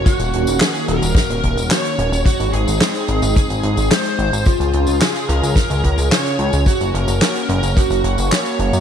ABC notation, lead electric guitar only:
X:1
M:4/4
L:1/8
Q:1/4=109
K:Ebdor
V:1 name="Lead electric guitar"
G2 A B3 d2 | G A3 A2 c2 | F2 A B3 d2 | G B2 B G2 d2 |]